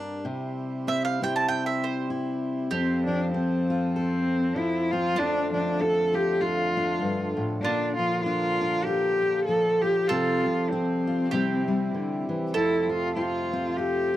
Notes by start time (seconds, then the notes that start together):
Already playing: G2 G3 A#3 D4 A#4
0.25 C3 E4 C5
0.87 C4 E5
1.05 F5
1.22 C4 E4 G4 G5
1.36 A5
1.48 G5
1.66 E5
1.84 C5
2.10 E4
2.71 F2 F3 C4 G4 A4
3.07 F3 D4
3.33 C4
3.70 F4
3.95 C4 A4
4.56 F3 E4
4.91 C4 F4
5.16 F2 D3 A3 D4 F4
5.54 F3 D4
5.79 D4 A4
6.14 F4 G4
6.41 D4 F4
6.77 D4
7.02 G2
7.37 A2
7.62 A#2 A#3 D4 F4
7.97 F3 F4
8.24 D4 F4
8.61 D4
8.85 F4 G4
9.22 F4
9.46 F3 A4
9.82 F4 G4
10.08 C3 F3 G3 F4 A4
10.12 C4
10.46 F3
10.70 C4
11.07 F4
11.31 C3 G3 C4 E4 G4
11.35 G4
11.68 G3
11.94 D3
12.29 E3
12.54 F2 A3 E4 F4 A4
12.83 E4
12.89 F3 F4
13.15 C4 F4
13.53 C4
13.77 F4 G4